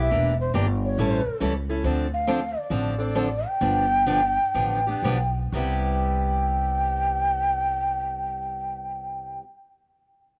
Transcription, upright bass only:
0.10 E1
0.54 G1
0.98 A1
1.26 muted upright bass stroke
1.41 C#2
1.84 D2
2.70 A1
3.61 G1
4.55 A1
5.02 B1
5.52 C2

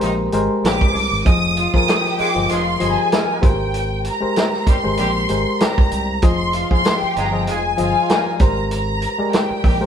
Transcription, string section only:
1.57 F4 F5
1.88 G4 G5
2.51 F4 F5
2.81 G#4 G#5
6.54 F4 F5
6.86 G4 G5
7.49 G#4 G#5
7.78 F4 F5

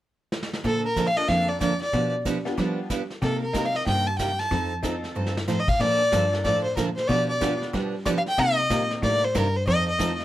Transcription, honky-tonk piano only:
1.16 A#3 D4 F4 A4
2.45 B3 D4 F4 G4
3.53 C4 D#4 G4 A#4
4.83 C4 D#4 F4 A4
6.12 A#3 D4 F4 A4
7.41 B3 D4 F4 G4
8.70 A#3 C4 D#4 G4
9.98 A3 C4 D#4 F4

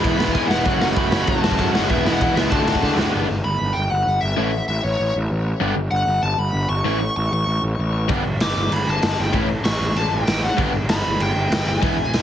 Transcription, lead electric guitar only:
0.00 B5
0.32 G#5
0.47 F#5
0.94 B5
1.24 A5
1.72 F#5
1.88 E5
2.12 F#5
2.35 E5
2.50 A5
3.44 B5
3.73 G5
3.90 F#5
4.21 E5
4.68 E5
4.83 C#5
5.91 F#5
6.23 A5
6.39 B5
6.69 C#6
7.17 C#6
7.33 C#6
8.42 D6
8.74 B5
8.89 A5
9.21 G5
9.64 C#6
9.97 A5
10.11 G5
10.43 F#5
10.89 B5
11.21 G5
11.68 G#5

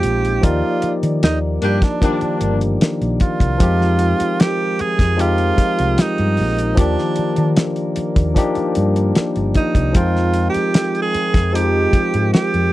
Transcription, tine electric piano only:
Already playing: F3 G#3 C4 D#4 F4
0.41 F3 A#3 D#4 G4 D5
2.01 D#3 F3 A#3 D4 G4
3.58 F3 G#3 C4 D#4
3.62 G4
5.16 F3 G#3 C4 D#4
5.20 G4
6.75 D#3 F3 A#3 D4 G4
8.34 F3 A#3 D4 D#4 G4
9.93 F3 G#3 C4 D#4 G5
11.52 F3 G#3 C4 D#4 G4

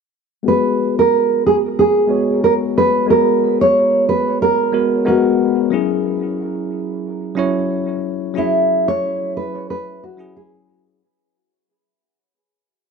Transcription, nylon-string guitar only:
0.48 B4
0.99 A#4
1.47 G#4
1.79 G#4
2.44 A#4
2.78 B4
3.10 A#4
3.61 C#5
4.09 B4
4.42 A#4
5.08 F#4
8.38 E4
8.88 C#5
9.37 B4
9.70 B4
10.04 F#4
10.37 G#4

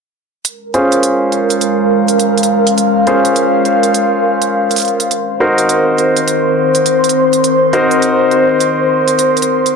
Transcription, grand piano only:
0.74 C#4 F4 G#4 C5
3.07 C#4 F4 G#4 C5
5.40 D#4 F#4 A#4 C5
7.73 D#4 F#4 A#4 C5

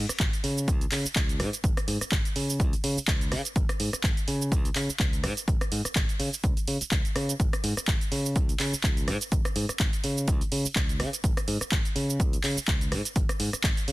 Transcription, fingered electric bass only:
0.09 muted fingered electric bass stroke
0.20 G#1
0.44 C#3
0.68 C#2
0.92 C#3
1.05 muted fingered electric bass stroke
1.16 C#2
1.40 G#2
1.64 G#1
1.77 muted fingered electric bass stroke
1.88 G#2
2.01 muted fingered electric bass stroke
2.12 G#1
2.36 C#3
2.60 C#2
2.73 muted fingered electric bass stroke
2.84 C#3
2.97 muted fingered electric bass stroke
3.08 C#2
3.32 C#3
3.56 G#1
3.80 G#2
3.93 muted fingered electric bass stroke
4.04 G#1
4.28 C#3
4.52 C#2
4.76 C#3
4.89 muted fingered electric bass stroke
5.00 C#2
5.24 G#2
5.48 G#1
5.61 muted fingered electric bass stroke
5.72 G#2
5.85 muted fingered electric bass stroke
5.96 G#1
6.20 C#3
6.44 C#2
6.68 C#3
6.81 muted fingered electric bass stroke
6.92 C#2
7.16 C#3
7.40 G#1
7.64 G#2
7.77 muted fingered electric bass stroke
7.88 G#1
8.12 C#3
8.36 C#2
8.60 C#3
8.73 muted fingered electric bass stroke
8.84 C#2
9.08 G#2
9.32 G#1
9.45 muted fingered electric bass stroke
9.56 G#2
9.69 muted fingered electric bass stroke
9.80 G#1
10.04 C#3
10.28 C#2
10.41 muted fingered electric bass stroke
10.52 C#3
10.65 muted fingered electric bass stroke
10.76 C#2
11.00 C#3
11.24 G#1
11.48 G#2
11.61 muted fingered electric bass stroke
11.72 G#1
11.96 C#3
12.20 C#2
12.44 C#3
12.57 muted fingered electric bass stroke
12.68 C#2
12.92 G#2
13.16 G#1
13.29 muted fingered electric bass stroke
13.40 G#2
13.53 muted fingered electric bass stroke
13.64 G#1
13.88 C#3

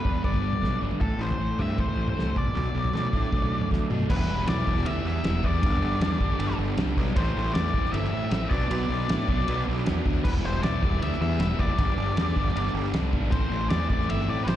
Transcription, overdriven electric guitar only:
Already playing: G3 B3
0.04 D4
0.23 B3
0.42 G3
0.61 B3
0.81 D4
1.01 A2
1.20 E3
1.40 A3
1.58 C4
1.78 A3
1.96 E3
2.16 A3
2.36 B2
2.54 B2
2.75 F#3
2.93 A3
3.13 D4
3.33 A3
3.52 F#3
3.70 A3
3.90 D4
4.09 E3 G3 B3 E4
4.47 E3 G3 B3 E4
4.66 E3 G3 B3 E4
4.85 E3 G3 B3 E4
5.24 E3 G3 B3 E4
5.43 E3 G3 B3 E4
5.62 G2 D3 G3 B3 D4
6.01 G2 D3 G3 B3 D4
6.20 G2 D3 G3 B3 D4
6.39 G2 D3 G3 B3 D4
6.77 G2 D3 G3 B3 D4
6.97 G2 D3 G3 B3 D4
7.16 A2 E3 A3 C4 E4
7.54 A2 E3 A3 C4 E4
7.73 A2 E3 A3 C4 E4
7.93 A2 E3 A3 C4 E4
8.32 A2 E3 A3 C4 E4
8.50 B2 F#3 B3 D4
8.70 B2 F#3 B3 D4
9.08 B2 F#3 B3 D4
9.28 B2 F#3 B3 D4
9.48 B2 F#3 B3 D4
9.86 B2 F#3 B3 D4
10.06 B2 F#3 B3 D4
10.25 E3 G3 B3 E4
10.63 E3 G3 B3 E4
10.82 E3 G3 B3 E4
11.02 E3 G3 B3 E4
11.40 E3 G3 B3 E4
11.59 E3 G3 B3 E4
11.79 G2 D3 G3 B3 D4
12.18 G2 D3 G3 B3 D4
12.36 G2 D3 G3 B3 D4
12.56 G2 D3 G3 B3 D4
12.94 G2 D3 G3 B3 D4
13.12 G2 D3 G3 B3 D4
13.32 A2 E3 A3 C4 E4
13.70 A2 E3 A3 C4 E4
13.89 A2 E3 A3 C4 E4
14.09 A2 E3 A3 C4 E4
14.47 A2 E3 A3 C4 E4

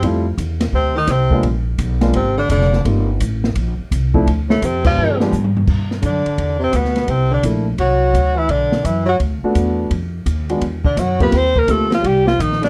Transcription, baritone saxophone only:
0.73 C3
0.95 D#3
1.08 C3
2.15 C3
2.38 D3
2.51 D3
4.49 A2
4.62 C3
4.84 F3
6.02 D3
6.59 C3
6.72 B2
7.08 C3
7.31 D3
7.80 F#3
8.35 E3
8.50 D3
8.84 E3
9.06 F#3
10.84 D3
10.97 F#3
11.21 B3
11.33 C4
11.56 A#3
11.68 A3
11.90 F3
12.02 G3
12.25 F3
12.39 D#3
12.61 D3

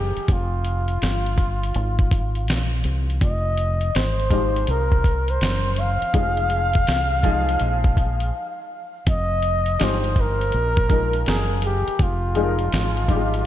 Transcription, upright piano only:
Already playing: F3 G#3 D#4 G5
4.30 F3 G#3 D#4 G4
6.13 F3 G#3 D#4 G#4
7.23 F3 G#3 D#4 G#4
9.79 F3 G#3 D#4 G4
10.89 F3 G#3 D#4 A#4
12.35 F3 G#3 D#4 G#4
12.43 A#4
13.08 F3 G3 D#4 G4
13.15 G#3

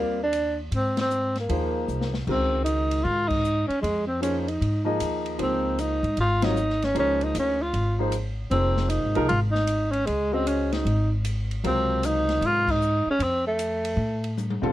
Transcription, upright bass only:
Already playing: D#2
0.71 G#2
1.49 D#2
1.88 C2
2.27 C#2
3.05 G#2
3.69 muted upright bass stroke
3.83 F2
4.61 G#2
5.00 D#2
5.39 C#2
6.03 G#2
6.17 G#1
6.95 C#2
7.35 D2
7.73 G#1
8.51 F1
9.04 G#1
9.17 C2
9.30 G#1
10.08 C#2
10.85 G#1
11.64 C#2
12.41 G#2
13.06 muted upright bass stroke
13.19 F2
13.97 A2
14.62 muted upright bass stroke

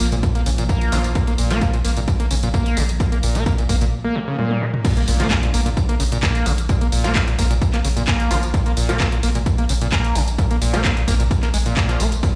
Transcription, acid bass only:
0.12 A#2
0.35 A#3
0.46 C#3
0.58 A#2
0.69 A#3
0.92 C#3
1.15 A#2
1.28 A#3
1.38 A#2
1.51 A#3
1.62 A#3
1.73 A#2
1.85 A#3
1.97 A#2
2.20 A#3
2.31 C#3
2.43 A#2
2.54 A#3
2.77 C#3
3.00 A#2
3.12 A#3
3.23 A#2
3.35 A#3
3.46 A#3
3.58 A#2
3.69 A#3
3.81 A#2
4.04 A#3
4.15 A#2
4.27 C#3
4.38 A#2
4.61 A#3
4.85 A#2
4.97 A#3
5.08 A#2
5.20 A#3
5.31 A#3
5.43 A#2
5.54 A#3
5.66 A#2
5.89 A#3
6.00 C#3
6.12 A#2
6.23 A#3
6.46 C#3
6.69 A#2
6.81 A#3
6.92 A#2
7.04 A#3
7.15 A#3
7.27 A#2
7.38 A#3
7.50 A#2
7.73 A#3
7.84 C#3
7.97 A#2
8.08 A#3
8.31 C#3
8.54 A#2
8.66 A#3
8.77 A#2
8.89 A#3
9.00 A#3
9.12 A#2
9.23 A#3
9.35 A#2
9.58 A#3
9.69 C#3
9.81 A#2
9.92 A#3
10.15 C#3
10.38 A#2
10.50 A#3
10.61 A#2
10.74 A#3
10.84 A#3
10.96 A#2
11.08 A#3
11.20 A#2
11.43 A#3
11.54 G#3
11.66 A#2
11.77 A#2
12.00 A#3
12.23 A#2

